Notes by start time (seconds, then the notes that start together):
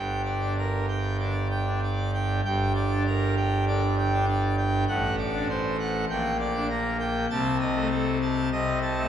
Already playing: G1 G2 G5
0.25 D5
0.42 D4
0.58 A#4
0.89 G5
1.19 D3 D5
1.50 G5
1.66 D4
1.83 D5
2.14 G5
2.45 G1 G2 G5
2.75 D5
2.92 D4
3.07 A#4
3.37 G5
3.68 D3 D5
3.98 G5
4.13 D4
4.29 D5
4.58 G5
4.88 A1 A2 F#5
5.18 D5
5.34 D4
5.49 C5
5.80 F#5
6.10 A#1 A#2 G5
6.40 D5
6.55 D4
6.70 A#4
7.00 G5
7.30 C2 C3 A5
7.60 D#5
7.76 A3
7.91 A4
8.22 A5
8.52 C2 C3 D#5
8.82 A5
8.98 A3